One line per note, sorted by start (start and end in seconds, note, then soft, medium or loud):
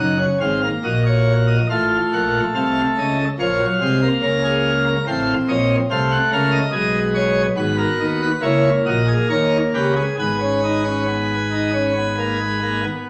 0.00 0.25 F#1 medium
0.00 0.25 F#2 medium
0.00 0.17 D#4 medium
0.00 0.25 F#5 medium
0.19 0.38 C#4 medium
0.41 0.68 G#1 medium
0.41 0.68 G#2 medium
0.41 0.60 C4 medium
0.41 0.68 F5 medium
0.64 1.56 A#3 medium
0.84 1.59 A#1 medium
0.84 1.58 A#2 medium
0.84 1.58 F#4 medium
0.84 1.03 D#5 medium
1.06 1.33 C#5 medium
1.48 1.67 D#5 medium
1.70 1.97 A1 medium
1.70 1.97 A2 medium
1.70 3.16 A3 medium
1.70 2.43 F4 medium
1.70 1.97 F5 medium
2.13 2.40 A#1 medium
2.13 2.40 A#2 soft
2.13 2.40 F#5 medium
2.55 2.81 C2 medium
2.55 2.81 C3 medium
2.55 3.27 A4 medium
2.55 2.81 F5 medium
2.98 3.24 C#2 medium
2.98 3.24 C#3 medium
2.98 3.24 D#5 medium
3.39 3.66 A#1 medium
3.39 3.65 A#2 medium
3.39 3.57 F3 medium
3.39 3.65 C#5 medium
3.39 4.84 F5 medium
3.60 3.78 F#3 medium
3.81 4.07 C2 medium
3.81 4.07 C3 medium
3.81 3.99 G#3 medium
3.81 4.08 C5 medium
4.02 4.93 A#3 medium
4.23 4.96 C#2 medium
4.23 4.96 C#3 medium
4.23 4.41 A#4 medium
4.44 4.70 G#4 medium
4.86 5.04 A#4 medium
5.08 5.34 A1 medium
5.08 5.34 A2 medium
5.08 5.80 C4 medium
5.08 5.34 C5 medium
5.08 5.34 F5 medium
5.49 5.75 A#1 medium
5.49 5.75 A#2 medium
5.49 5.75 C#5 medium
5.49 5.75 D#5 medium
5.91 6.17 C2 medium
5.91 6.17 C3 medium
5.91 6.63 A3 medium
5.91 6.17 C5 medium
5.91 6.09 F5 medium
6.12 6.30 F#5 medium
6.32 6.59 C#2 medium
6.32 6.58 C#3 medium
6.32 6.59 A#4 medium
6.32 6.51 F5 medium
6.52 6.71 D#5 medium
6.72 7.46 B1 medium
6.72 7.46 B2 medium
6.72 7.46 G#3 medium
6.72 7.46 G#4 medium
6.72 6.99 D#5 medium
7.15 7.42 C#5 medium
7.57 7.84 G#1 medium
7.57 7.84 G#2 medium
7.57 8.31 B3 medium
7.57 8.31 F#4 medium
7.57 7.76 B4 medium
7.78 8.05 A#4 medium
8.00 8.27 D#2 medium
8.00 8.27 D#3 medium
8.22 8.40 B4 medium
8.42 8.70 C#2 medium
8.42 8.69 C#3 medium
8.42 9.93 A#3 medium
8.42 8.69 E4 medium
8.42 8.69 C#5 medium
8.86 9.14 A#1 medium
8.86 9.13 A#2 medium
8.86 9.05 F#4 medium
8.86 9.13 D#5 medium
9.08 9.26 G#4 medium
9.30 9.57 D#2 medium
9.30 9.57 D#3 medium
9.30 9.57 A#4 medium
9.30 9.57 C#5 medium
9.74 10.01 C#2 medium
9.74 10.01 C#3 medium
9.74 9.93 G4 medium
9.74 10.02 B4 medium
9.96 10.15 G#4 medium
10.19 12.84 G#1 medium
10.19 12.84 G#2 medium
10.19 10.38 B3 medium
10.19 12.84 B4 medium
10.19 12.84 G#5 medium
10.41 10.60 C#4 medium
10.64 10.82 D#4 medium
10.85 11.04 C#4 medium
11.07 11.35 B3 medium
11.52 11.70 D#4 medium
11.74 11.92 C#4 medium
11.97 12.15 B3 medium
12.18 12.37 A#3 soft
12.41 12.59 G#3 medium
12.62 12.81 A#3 soft
12.84 13.10 B3 medium